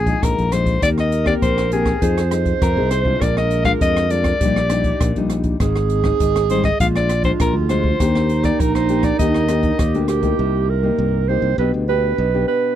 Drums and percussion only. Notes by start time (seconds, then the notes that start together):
0.06 kick, closed hi-hat
0.23 kick, cross-stick, closed hi-hat
0.38 closed hi-hat
0.52 cross-stick, closed hi-hat
0.66 kick, closed hi-hat
0.82 kick, cross-stick, closed hi-hat
0.98 cross-stick
1.12 closed hi-hat
1.26 kick, cross-stick
1.42 kick, closed hi-hat
1.58 cross-stick, closed hi-hat
1.72 closed hi-hat
1.86 kick, cross-stick
2.02 kick, closed hi-hat
2.18 cross-stick, closed hi-hat
2.31 cross-stick, closed hi-hat
2.45 kick, closed hi-hat
2.62 kick, cross-stick, closed hi-hat
2.91 cross-stick, closed hi-hat
3.05 kick
3.21 kick, cross-stick, closed hi-hat
3.37 cross-stick
3.51 closed hi-hat
3.65 kick, cross-stick, closed hi-hat
3.81 kick, closed hi-hat
3.97 cross-stick, closed hi-hat
4.10 closed hi-hat
4.24 kick, cross-stick, closed hi-hat
4.41 kick, closed hi-hat
4.56 cross-stick
4.70 cross-stick, closed hi-hat
4.84 kick, closed hi-hat
5.01 kick, cross-stick, closed hi-hat
5.16 closed hi-hat
5.30 cross-stick, closed hi-hat
5.43 kick, closed hi-hat
5.60 kick, cross-stick, closed hi-hat
5.76 cross-stick
5.90 closed hi-hat
6.04 kick, cross-stick
6.20 kick, closed hi-hat
6.36 cross-stick, closed hi-hat
6.50 closed hi-hat
6.64 kick, cross-stick
6.80 kick, closed hi-hat
6.96 cross-stick, closed hi-hat
7.09 cross-stick, closed hi-hat
7.24 kick, closed hi-hat
7.40 kick, cross-stick, closed hi-hat
7.69 cross-stick, closed hi-hat
7.84 kick
8.00 kick, cross-stick, closed hi-hat
8.15 cross-stick
8.29 closed hi-hat
8.44 kick, cross-stick, closed hi-hat
8.60 kick, closed hi-hat
8.75 cross-stick, closed hi-hat
8.89 closed hi-hat
9.03 kick, cross-stick, closed hi-hat
9.19 kick, closed hi-hat
9.34 cross-stick
9.48 cross-stick, closed hi-hat
9.63 kick, closed hi-hat
9.79 kick, cross-stick, closed hi-hat
9.94 closed hi-hat
10.08 cross-stick, closed hi-hat
10.23 kick, closed hi-hat